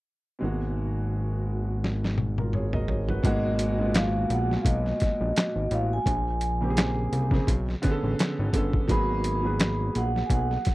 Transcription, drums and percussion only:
1.84 snare soft
2.04 snare soft
2.18 high tom medium
2.38 high tom medium
2.53 mid tom medium
2.73 mid tom medium
2.88 floor tom medium
3.09 floor tom medium
3.24 kick medium
3.24 closed hi-hat medium
3.59 closed hi-hat medium
3.94 snare loud
3.94 clap medium
3.94 closed hi-hat medium
4.30 closed hi-hat medium
4.51 snare soft
4.65 kick medium
4.65 closed hi-hat medium
4.86 snare soft
5.00 kick medium
5.00 snare soft
5.00 closed hi-hat medium
5.36 snare medium
5.36 clap medium
5.36 closed hi-hat medium
5.71 closed hi-hat medium
6.06 kick medium
6.06 closed hi-hat medium
6.41 closed hi-hat medium
6.77 snare loud
6.77 clap medium
6.77 closed hi-hat medium
7.13 closed hi-hat medium
7.31 kick medium
7.31 snare soft
7.47 kick medium
7.47 closed hi-hat medium
7.69 snare soft
7.83 kick medium
7.83 snare soft
7.83 closed hi-hat medium
8.19 snare medium
8.19 clap medium
8.19 closed hi-hat medium
8.53 kick medium
8.53 closed hi-hat medium
8.73 kick medium
8.88 kick medium
8.88 closed hi-hat medium
9.24 closed hi-hat medium
9.60 snare loud
9.60 clap medium
9.60 closed hi-hat medium
9.95 closed hi-hat medium
10.16 snare soft
10.30 kick medium
10.30 closed hi-hat medium
10.51 snare soft
10.65 kick medium
10.65 snare soft
10.65 closed hi-hat medium

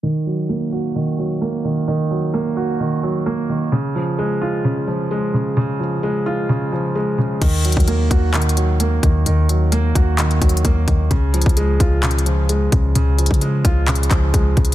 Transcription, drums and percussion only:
7.42 kick loud
7.42 closed hi-hat loud
7.42 crash loud
7.65 closed hi-hat medium
7.72 closed hi-hat medium
7.77 kick loud
7.77 closed hi-hat medium
7.88 closed hi-hat medium
8.11 kick loud
8.11 closed hi-hat medium
8.34 clap loud
8.34 closed hi-hat medium
8.42 closed hi-hat medium
8.49 closed hi-hat medium
8.57 closed hi-hat medium
8.80 closed hi-hat medium
9.03 kick medium
9.03 closed hi-hat medium
9.26 closed hi-hat loud
9.49 closed hi-hat medium
9.72 closed hi-hat medium
9.95 kick loud
9.95 closed hi-hat medium
10.18 clap loud
10.18 closed hi-hat medium
10.31 closed hi-hat soft
10.42 kick loud
10.42 closed hi-hat medium
10.49 closed hi-hat medium
10.57 closed hi-hat medium
10.65 kick loud
10.65 closed hi-hat medium
10.88 kick medium
10.88 closed hi-hat medium
11.11 kick loud
11.11 closed hi-hat loud
11.34 closed hi-hat medium
11.42 closed hi-hat medium
11.46 kick loud
11.46 closed hi-hat medium
11.57 closed hi-hat medium
11.80 kick loud
11.80 closed hi-hat medium
12.03 clap loud
12.03 closed hi-hat medium
12.11 closed hi-hat medium
12.19 closed hi-hat medium
12.26 closed hi-hat medium
12.49 closed hi-hat medium
12.72 kick medium
12.72 closed hi-hat medium
12.95 closed hi-hat loud
13.19 closed hi-hat medium
13.26 closed hi-hat medium
13.31 kick loud
13.31 closed hi-hat medium
13.41 closed hi-hat medium
13.65 kick loud
13.65 closed hi-hat medium
13.88 clap loud
13.88 closed hi-hat medium
13.95 closed hi-hat medium
14.03 closed hi-hat medium
14.11 kick medium
14.11 clap medium
14.11 closed hi-hat medium
14.34 kick loud
14.34 closed hi-hat medium
14.57 kick medium
14.57 closed hi-hat soft
14.57 open hi-hat medium
14.65 closed hi-hat medium

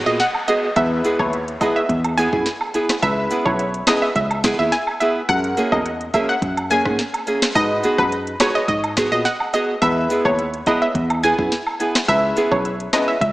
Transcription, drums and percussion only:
0.20 snare medium
0.20 closed hi-hat medium
0.34 high woodblock medium
0.48 closed hi-hat medium
0.48 cabasa medium
0.76 kick loud
0.76 closed hi-hat medium
0.76 high woodblock medium
1.05 closed hi-hat medium
1.05 cabasa medium
1.19 kick loud
1.19 high woodblock medium
1.33 closed hi-hat medium
1.48 closed hi-hat medium
1.61 kick loud
1.61 closed hi-hat medium
1.61 cabasa medium
1.61 high woodblock medium
1.89 kick loud
1.89 closed hi-hat medium
2.04 closed hi-hat medium
2.04 high woodblock medium
2.18 closed hi-hat medium
2.18 cabasa medium
2.33 kick loud
2.46 snare medium
2.46 closed hi-hat medium
2.61 high woodblock medium
2.74 closed hi-hat medium
2.74 cabasa medium
2.89 cross-stick loud
2.89 snare loud
3.03 kick loud
3.03 closed hi-hat medium
3.03 high woodblock medium
3.31 closed hi-hat medium
3.31 cabasa medium
3.46 kick loud
3.46 high woodblock medium
3.59 closed hi-hat medium
3.74 closed hi-hat medium
3.87 cross-stick loud
3.87 snare loud
3.87 closed hi-hat medium
3.87 cabasa medium
3.87 high woodblock medium
4.16 kick loud
4.16 closed hi-hat medium
4.31 closed hi-hat medium
4.31 high woodblock medium
4.44 kick loud
4.44 cross-stick medium
4.44 snare loud
4.44 closed hi-hat medium
4.44 cabasa medium
4.72 snare medium
4.72 closed hi-hat medium
4.87 high woodblock medium
5.01 closed hi-hat medium
5.01 cabasa medium
5.29 kick loud
5.29 closed hi-hat medium
5.29 high woodblock medium
5.44 closed hi-hat medium
5.57 closed hi-hat medium
5.57 cabasa medium
5.72 kick loud
5.72 high woodblock medium
5.86 closed hi-hat medium
6.01 closed hi-hat medium
6.14 kick loud
6.14 closed hi-hat medium
6.14 cabasa medium
6.14 high woodblock medium
6.42 kick loud
6.42 closed hi-hat medium
6.57 closed hi-hat medium
6.57 high woodblock medium
6.71 closed hi-hat medium
6.71 cabasa medium
6.85 kick loud
6.85 cross-stick loud
6.99 snare medium
6.99 closed hi-hat medium
7.14 closed hi-hat medium
7.14 high woodblock medium
7.27 closed hi-hat medium
7.27 cabasa medium
7.42 cross-stick medium
7.42 snare loud
7.55 kick loud
7.55 closed hi-hat medium
7.55 high woodblock medium
7.83 closed hi-hat medium
7.83 cabasa medium
7.98 kick loud
7.98 high woodblock medium
8.12 closed hi-hat medium
8.27 closed hi-hat medium
8.40 cross-stick loud
8.40 snare loud
8.40 closed hi-hat medium
8.40 cabasa medium
8.40 high woodblock medium
8.68 kick loud
8.68 closed hi-hat medium
8.84 closed hi-hat medium
8.84 high woodblock medium
8.97 kick loud
8.97 cross-stick medium
8.97 snare loud
8.97 closed hi-hat medium
8.97 cabasa medium
9.25 snare medium
9.25 closed hi-hat medium
9.40 high woodblock medium
9.54 closed hi-hat medium
9.54 cabasa medium
9.82 kick loud
9.82 closed hi-hat medium
9.82 high woodblock medium
10.10 closed hi-hat medium
10.10 cabasa medium
10.25 kick loud
10.25 high woodblock medium
10.39 closed hi-hat medium
10.54 closed hi-hat medium
10.66 kick loud
10.66 closed hi-hat medium
10.66 cabasa medium
10.66 high woodblock medium
10.95 kick loud
10.95 closed hi-hat medium
11.10 closed hi-hat medium
11.10 high woodblock medium
11.23 closed hi-hat medium
11.23 cabasa medium
11.39 kick loud
11.52 snare medium
11.52 closed hi-hat medium
11.67 high woodblock medium
11.80 closed hi-hat medium
11.80 cabasa medium
11.95 cross-stick loud
11.95 snare loud
12.08 kick loud
12.08 closed hi-hat medium
12.08 high woodblock medium
12.37 closed hi-hat medium
12.37 cabasa medium
12.51 kick loud
12.51 high woodblock medium
12.65 closed hi-hat medium
12.80 closed hi-hat medium
12.93 cross-stick loud
12.93 snare loud
12.93 closed hi-hat medium
12.93 cabasa medium
12.93 high woodblock medium
13.21 kick loud
13.21 closed hi-hat medium

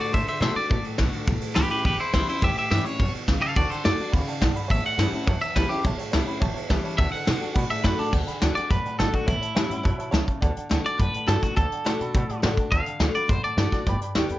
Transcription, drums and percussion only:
0.14 kick loud
0.14 ride medium
0.28 ride medium
0.42 snare loud
0.42 ride medium
0.56 ride medium
0.70 kick loud
0.70 ride medium
0.84 ride medium
0.98 kick medium
0.98 snare loud
0.98 ride medium
1.13 ride medium
1.27 kick loud
1.27 ride medium
1.41 ride medium
1.56 snare loud
1.56 ride loud
1.71 ride medium
1.85 kick loud
1.85 ride medium
1.99 ride medium
2.14 kick medium
2.14 snare loud
2.14 ride medium
2.28 ride medium
2.42 kick loud
2.42 ride medium
2.56 ride medium
2.71 snare loud
2.71 ride medium
2.85 ride medium
2.99 kick loud
2.99 ride medium
3.14 ride medium
3.28 kick medium
3.28 snare loud
3.28 ride medium
3.42 ride medium
3.56 kick loud
3.56 ride loud
3.71 ride medium
3.85 snare loud
3.85 ride loud
4.00 ride medium
4.13 kick loud
4.13 ride loud
4.28 ride medium
4.42 kick medium
4.42 snare loud
4.42 ride medium
4.56 ride medium
4.70 kick loud
4.70 ride medium
4.85 ride medium
4.99 snare loud
4.99 ride medium
5.14 ride medium
5.27 kick loud
5.27 ride medium
5.42 ride medium
5.56 kick medium
5.56 snare loud
5.56 ride medium
5.71 ride medium
5.85 kick loud
5.85 ride medium
5.99 ride medium
6.13 snare loud
6.13 ride medium
6.28 ride medium
6.42 kick loud
6.42 ride medium
6.56 ride medium
6.70 kick medium
6.70 snare loud
6.70 ride medium
6.84 ride medium
6.98 kick loud
6.98 ride medium
7.13 ride medium
7.27 snare loud
7.27 ride medium
7.42 ride medium
7.56 kick loud
7.56 ride medium
7.70 ride medium
7.84 kick medium
7.84 snare loud
7.84 ride medium
7.99 ride medium
8.13 kick loud
8.13 crash loud
8.28 closed hi-hat medium
8.42 snare loud
8.42 closed hi-hat medium
8.57 closed hi-hat medium
8.71 kick loud
8.71 closed hi-hat medium
8.86 closed hi-hat medium
9.00 snare loud
9.00 closed hi-hat loud
9.14 kick medium
9.14 closed hi-hat medium
9.28 kick loud
9.28 closed hi-hat medium
9.42 closed hi-hat medium
9.56 snare loud
9.56 closed hi-hat medium
9.71 closed hi-hat medium
9.85 kick loud
9.85 closed hi-hat medium
9.99 closed hi-hat medium
10.14 snare loud
10.14 closed hi-hat medium
10.28 kick medium
10.28 closed hi-hat medium
10.42 kick loud
10.42 closed hi-hat medium
10.57 closed hi-hat medium
10.71 snare loud
10.71 closed hi-hat medium
10.85 closed hi-hat medium
10.99 kick loud
10.99 closed hi-hat medium
11.14 closed hi-hat medium
11.28 snare loud
11.28 closed hi-hat medium
11.43 kick medium
11.43 snare soft
11.43 closed hi-hat medium
11.57 kick loud
11.57 closed hi-hat medium
11.72 closed hi-hat medium
11.86 snare loud
11.86 closed hi-hat medium
12.01 closed hi-hat medium
12.15 kick loud
12.15 closed hi-hat medium
12.29 closed hi-hat medium
12.43 snare loud
12.43 closed hi-hat medium
12.57 kick medium
12.57 closed hi-hat medium
12.72 kick loud
12.72 closed hi-hat medium
12.86 closed hi-hat medium
13.00 snare loud
13.00 closed hi-hat medium
13.15 closed hi-hat medium
13.29 kick loud
13.29 closed hi-hat medium
13.44 closed hi-hat medium
13.58 snare loud
13.58 closed hi-hat medium
13.72 kick medium
13.72 snare soft
13.72 closed hi-hat medium
13.86 kick loud
13.86 closed hi-hat medium
14.01 closed hi-hat medium
14.15 snare loud
14.15 closed hi-hat medium
14.29 closed hi-hat medium

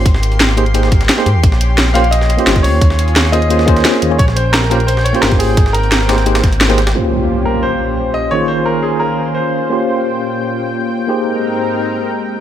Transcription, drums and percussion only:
0.06 kick loud
0.06 closed hi-hat medium
0.14 snare soft
0.23 closed hi-hat medium
0.32 closed hi-hat soft
0.40 snare loud
0.40 closed hi-hat medium
0.49 snare medium
0.57 closed hi-hat medium
0.66 closed hi-hat soft
0.74 closed hi-hat medium
0.83 snare medium
0.92 kick loud
0.92 closed hi-hat medium
1.01 snare soft
1.01 closed hi-hat soft
1.09 snare loud
1.09 closed hi-hat medium
1.18 snare soft
1.26 closed hi-hat medium
1.43 kick loud
1.43 closed hi-hat medium
1.52 snare soft
1.61 closed hi-hat medium
1.78 snare loud
1.78 closed hi-hat medium
1.87 snare soft
1.95 snare soft
1.95 closed hi-hat medium
2.04 closed hi-hat soft
2.12 closed hi-hat medium
2.21 snare soft
2.30 closed hi-hat medium
2.39 closed hi-hat soft
2.47 snare loud
2.47 closed hi-hat medium
2.56 kick loud
2.56 snare soft
2.64 closed hi-hat medium
2.64 open hi-hat medium
2.81 kick loud
2.81 closed hi-hat medium
2.90 snare soft
2.99 closed hi-hat medium
3.08 closed hi-hat soft
3.16 snare loud
3.16 closed hi-hat medium
3.25 snare medium
3.33 closed hi-hat medium
3.42 closed hi-hat soft
3.50 closed hi-hat medium
3.59 snare medium
3.68 kick loud
3.68 closed hi-hat medium
3.76 snare soft
3.76 closed hi-hat soft
3.85 snare loud
3.85 closed hi-hat medium
3.94 snare soft
4.02 closed hi-hat medium
4.19 kick loud
4.19 closed hi-hat medium
4.28 snare soft
4.36 closed hi-hat medium
4.54 snare loud
4.54 closed hi-hat medium
4.63 snare soft
4.71 closed hi-hat medium
4.80 closed hi-hat soft
4.88 closed hi-hat medium
4.97 snare soft
5.05 closed hi-hat medium
5.14 closed hi-hat soft
5.23 snare loud
5.23 closed hi-hat medium
5.32 kick loud
5.32 snare soft
5.40 closed hi-hat medium
5.40 open hi-hat medium
5.57 kick loud
5.57 closed hi-hat medium
5.57 closed hi-hat loud
5.66 snare medium
5.74 closed hi-hat medium
5.83 closed hi-hat soft
5.92 snare loud
5.92 closed hi-hat loud
5.92 closed hi-hat medium
6.01 snare medium
6.09 snare loud
6.09 closed hi-hat medium
6.18 snare soft
6.18 closed hi-hat soft
6.26 closed hi-hat medium
6.35 snare loud
6.35 closed hi-hat medium
6.35 closed hi-hat soft
6.44 kick loud
6.44 snare soft
6.44 closed hi-hat medium
6.52 closed hi-hat medium
6.52 closed hi-hat soft
6.61 snare loud
6.61 closed hi-hat medium
6.61 closed hi-hat loud
6.70 snare soft
6.70 closed hi-hat soft
6.78 snare soft
6.78 closed hi-hat medium
6.87 snare loud
6.87 closed hi-hat medium

